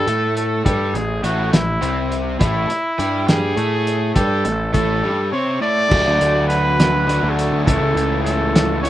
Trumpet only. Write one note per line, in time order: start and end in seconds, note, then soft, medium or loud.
0.00 0.32 A4 medium
0.36 0.64 A4 medium
0.64 0.96 A4 medium
0.94 1.25 G#4 medium
1.23 1.52 F#4 medium
1.53 2.15 E4 medium
2.40 3.29 E4 medium
3.27 4.14 G#4 medium
4.14 4.70 A4 medium
4.73 5.28 A4 medium
5.32 5.59 C#5 medium
5.61 6.45 D5 loud
6.47 7.31 B4 medium
7.30 7.37 G#4 medium
7.35 7.63 A4 medium
7.64 8.20 A4 medium
8.23 8.79 A4 medium
8.82 8.90 C#5 medium